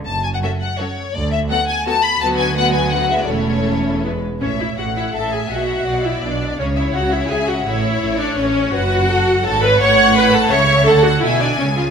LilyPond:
<<
  \new Staff \with { instrumentName = "Violin section" } { \time 3/4 \key d \lydian \tempo 4 = 167 a''8 gis''16 fis''16 e''8 fis''8 cis''4 | d''8 e''8 fis''8 gis''8 a''8 b''8 | \key a \major a''8 gis''8 fis''8 gis''8 fis''8 e''16 d''16 | cis''2 r4 |
e''4 fis''4 e''4~ | e''4 d''2 | cis''2 e''4 | cis''2. |
\key fis \minor b'4 a'4 cis''4 | fis''2 e''4 | fis''4 gis''2 | }
  \new Staff \with { instrumentName = "Violin section" } { \time 3/4 \key d \lydian r4 <fis' a'>4 <fis' a'>4 | r4 <fis' a'>4 <fis' a'>4 | \key a \major <fis' b'>4 <fis' b'>4 <fis' b'>4 | <e' a'>2 <e' b'>8 r8 |
cis''8 e''8 fis''8 e''8 a''8 gis''8 | fis''4. e''8 d''4 | cis''8 e''8 fis''8 e''8 gis''8 fis''8 | e''4. d''8 cis''4 |
\key fis \minor fis''2 a''8 b''8 | cis'''4 b''8 a''8 cis'''4 | a''8 fis''8 e''8 d''8 cis''8 eis''8 | }
  \new Staff \with { instrumentName = "Viola section" } { \time 3/4 \key d \lydian << { r4 cis'4 cis'4 | r4 b4 b4 | \key a \major b4 b4 b4 | cis'2 b8 r8 |
cis'8 e'8 fis'8 e'8 a'8 gis'8 | fis'4. e'8 d'4 | cis'8 e'8 fis'8 e'8 gis'8 fis'8 | e'4. d'8 cis'4 |
\key fis \minor fis'2 a'8 b'8 | cis''4 b'8 a'8 cis''4 | a'8 fis'8 e'8 d'8 cis'8 eis'8 | } \\ { r4 fis4 fis4 | r4 fis4 fis4 | fis4 fis4 fis8 gis8 | a2 gis8 r8 |
r2. | r2. | r2. | r2. |
r2. | r2. | r2. | } >> }
  \new Staff \with { instrumentName = "Cello section" } { \clef bass \time 3/4 \key d \lydian fis,4 r2 | d,4 r2 | \key a \major d,2. | e,2~ e,8 r8 |
a,4 a,4 a,4 | b,4 b,4 b,4 | cis4 cis4 cis4 | a,4 a,4 a,4 |
\key fis \minor fis,2 gis,4 | a,2 cis4 | d4 b,4 cis4 | }
  \new Staff \with { instrumentName = "Double bass section" } { \clef bass \time 3/4 \key d \lydian fis,,4 r2 | d,4 r2 | \key a \major d,2. | e,,2~ e,,8 r8 |
a,,4 a,,4 a,,4 | b,,4 b,,4 b,,4 | cis,4 cis,4 cis,4 | a,,4 a,,4 a,,4 |
\key fis \minor fis,,2 gis,,4 | a,,2 cis,4 | d,4 b,,4 cis,4 | }
>>